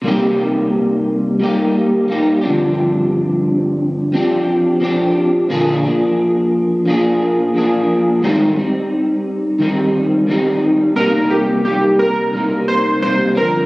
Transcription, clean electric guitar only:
X:1
M:4/4
L:1/8
Q:1/4=88
K:Cm
V:1 name="Clean electric guitar"
[C,G,B,EG]4 [G,B,EG]2 [G,B,EG] [G,,D,F,CDG]- | [G,,D,F,CDG]4 [F,CDG]2 [F,CDG]2 | [B,,D,F,B,DA] [F,B,DA]3 [F,B,DA]2 [F,B,DA]2 | [A,,E,G,CE] [G,CE]3 [E,G,CE]2 [E,G,CE]2 |
[C,G,B,E]2 [C,G,B,E]2 [C,G,B,E]2 [C,G,B,E] [G,,D,F,CD] |]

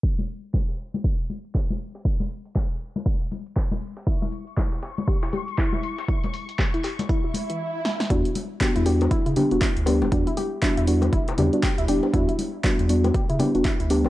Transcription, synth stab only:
X:1
M:4/4
L:1/16
Q:"Swing 16ths" 1/4=119
K:Edor
V:1 name="Synth stab"
z16 | z16 | z16 | z16 |
[G,B,DF] z3 [G,B,DF]2 [G,B,DF]2 z2 [G,B,DG] [G,B,DF] z2 [G,B,DG]2 | [G,B,DF] z3 [G,B,DF]2 [G,B,DF]2 z2 [G,B,DG] [G,B,DF] z2 [G,B,DG]2 | [G,B,DF] z3 [G,B,DF]2 [G,B,DF]2 z2 [G,B,DG] [G,B,DF] z2 [G,B,DG]2 |]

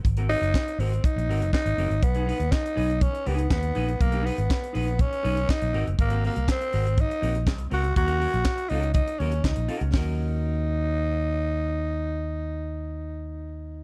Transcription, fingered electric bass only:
X:1
M:4/4
L:1/16
Q:1/4=121
K:Ebm
V:1 name="Fingered electric bass" clef=bass
A,,,3 G,,, z2 A,,,2 z B,,, A,,, G,,, z A,,, G,,, A,,, | =B,,,3 ^D,, z2 B,,,3 z _D,,2 ^D,,2 _B,,,2 | =B,,,3 ^G,,, z2 _B,,,3 z =B,,,2 z _B,,, A,,, _G,,, | A,,,3 =C,, z2 A,,,3 z B,,,2 C,,2 D,,2 |
E,,3 B,,, z2 D,,3 z E,,2 D,, B,,, z D,, | E,,16- | E,,16 |]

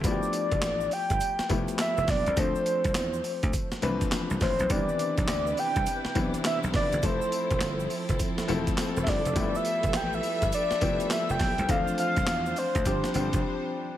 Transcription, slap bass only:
X:1
M:4/4
L:1/16
Q:"Swing 16ths" 1/4=103
K:Gmix
V:1 name="Slap bass" clef=bass
G,,, z2 F,,, A,,,2 z G,,, z2 F,,, z2 F,,, B,,, C,, | D,, z2 C,, E,,2 z D,, z2 C,, z2 C,, A,,, B,,, | C,, z2 B,,, D,,2 z C,, z2 B,,, z2 B,,, F,,, G,,, | F,,, z2 E,,, G,,,2 z F,,, z2 E,,, z2 E,,, G,,, F,,, |
G,,, z2 F,,, A,,,2 z G,,, z2 F,,, z2 F,,, B,,, C,, | D,, z2 C,, E,,2 z D,, G,,, z G,,, F,,, z4 |]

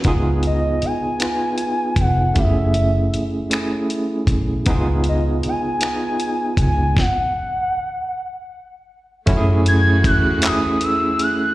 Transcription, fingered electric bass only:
X:1
M:6/8
L:1/8
Q:3/8=52
K:F#dor
V:1 name="Fingered electric bass" clef=bass
C,,2 z3 ^E,,, | F,,,2 z3 B,,, | C,,2 z3 C,, | z6 |
F,,2 E,,4 |]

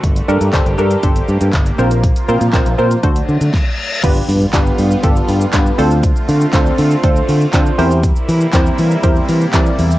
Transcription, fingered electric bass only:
X:1
M:4/4
L:1/16
Q:1/4=120
K:Dm
V:1 name="Fingered electric bass" clef=bass
G,,,2 G,, G,, G,,, G,,, G,,2 G,,,2 G,, G,, G,,,2 B,,,2- | B,,,2 B,, B,, B,,, B,,, B,,2 D,,2 D, D, z4 | [K:Gmix] G,,,2 G,,2 G,,,2 G,,2 G,,,2 G,,2 G,,2 D,,2- | D,,2 D,2 D,,2 D,2 D,,2 D,2 D,2 E,,2- |
E,,2 E,2 E,,2 E,2 E,,2 E,2 E,2 E,,2 |]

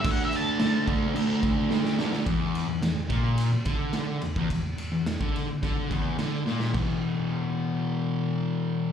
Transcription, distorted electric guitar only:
X:1
M:4/4
L:1/16
Q:1/4=107
K:Dlyd
V:1 name="Distorted electric guitar" clef=bass
[D,A,D]4 [D,A,D]2 [D,A,D]2 [D,A,D]4 [D,A,D]2 [D,A,D]2 | E,,3 E,, E,, E,, ^A,,3 z D,4 E,, E,, | E,,2 E,, E,,2 D,2 z D,2 E,,2 D,2 ^A,,2 | [E,,B,,E,]16 |]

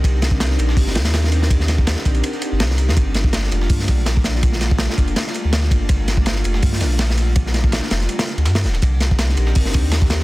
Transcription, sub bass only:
X:1
M:4/4
L:1/16
Q:"Swing 16ths" 1/4=164
K:Cdor
V:1 name="Sub bass" clef=bass
C,,6 B,,,2 G,,,2 E,,6- | E,,4- E,, z B,,,2 z3 G,,, C,,3 F,, | G,,,6 F,,,2 G,,2 B,,,6- | B,,,4- B,,, z F,,,2 z3 D,,3 G,,,2 |
G,,,6 F,,,2 G,,2 B,,,6- | B,,,4- B,,, z F,,,2 z3 D,, G,,2 D,,,2 | C,,6 B,,,2 G,,,2 E,,6 |]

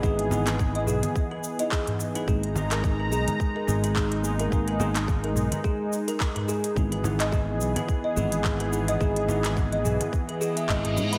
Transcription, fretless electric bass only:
X:1
M:4/4
L:1/8
Q:"Swing 16ths" 1/4=107
K:Elyd
V:1 name="Fretless electric bass" clef=bass
G,,,3 B,,, z4 | G,,,3 B,,, z G,,,3 | G,,,3 B,,, z4 | G,,,3 B,,, z G,,,3 |
G,,,3 B,,, z2 G,,, G,, |]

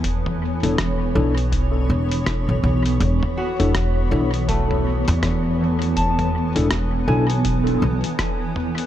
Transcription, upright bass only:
X:1
M:4/4
L:1/16
Q:"Swing 16ths" 1/4=81
K:Emix
V:1 name="Upright bass" clef=bass
E,,3 E,,,3 B,,,4 E,,,3 B,,, B,,,2 | E,,, z2 E,,,3 B,,,4- B,,, E,,4- E,,- | E,,3 E,,,3 B,,,4 B,,, z4 z |]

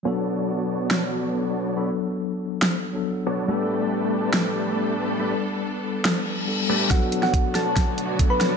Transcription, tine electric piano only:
X:1
M:4/4
L:1/16
Q:1/4=140
K:Bm
V:1 name="Tine electric piano"
[F,B,DA]12 [F,B,DA]4 | [F,B,DA]2 z8 z [F,B,DA] z4 | [G,B,DA]12 [G,B,DA]4 | [G,B,DA]2 z8 z2 [G,B,DA]2 [G,B,DA]2 |
[F,B,DA]12 [F,B,DA]4 |]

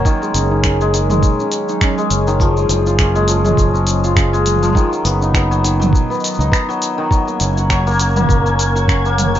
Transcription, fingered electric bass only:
X:1
M:4/4
L:1/16
Q:"Swing 16ths" 1/4=102
K:F#
V:1 name="Fingered electric bass" clef=bass
z2 F,,,6 z6 F,,,2- | F,,,2 F,,,6 F,,,8 | z2 F,,,6 z3 C,, z4 | z2 F,,,6 F,,,8 |]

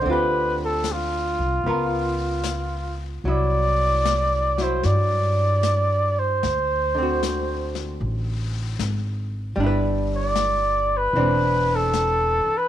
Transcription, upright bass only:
X:1
M:4/4
L:1/8
Q:"Swing" 1/4=76
K:Dmix
V:1 name="Upright bass" clef=bass
D,,3 C,, ^C,,4 | C,,4 G,,4 | D,,4 A,,,2 _A,,,2 | G,,,4 E,,,3 z |]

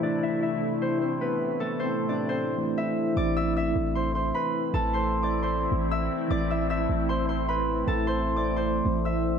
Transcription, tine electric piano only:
X:1
M:4/4
L:1/8
Q:1/4=153
K:Am
V:1 name="Tine electric piano"
[C,E,A,E]8- | [C,E,A,E]4- [C,E,A,E] [E,A,CE]3 | [E,A,CE]8- | [E,A,CE]4- [E,A,CE] [E,A,CE]3 |
[E,A,CE]8- | [E,A,CE]4- [E,A,CE] [E,A,CE]3 |]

